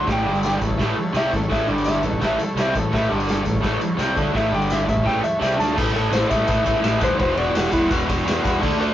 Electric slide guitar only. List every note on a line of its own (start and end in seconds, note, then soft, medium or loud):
0.12 0.61 G5 medium
1.17 1.32 E5 loud
1.36 1.51 A4 medium
1.52 1.68 E5 loud
1.71 1.86 A4 medium
1.85 2.02 E5 medium
2.06 2.21 A4 medium
2.25 2.40 E5 medium
2.43 2.58 A4 medium
2.60 2.75 E5 medium
2.77 2.92 A4 loud
2.94 3.10 E5 medium
3.12 3.28 A4 medium
3.31 3.63 A4 loud
4.37 4.53 E5 loud
4.55 4.71 G5 medium
4.72 4.88 E5 medium
4.89 5.06 E5 medium
5.06 5.23 G5 medium
5.24 5.41 E5 medium
5.42 5.59 E5 medium
5.60 5.76 A5 medium
5.96 6.12 A4 loud
6.13 6.30 C5 medium
6.30 6.99 E5 loud
7.04 7.19 C5 medium
7.21 7.37 C5 loud
7.38 7.55 D5 medium
7.55 7.72 G4 medium
7.73 7.90 E4 loud
8.81 8.94 A4 loud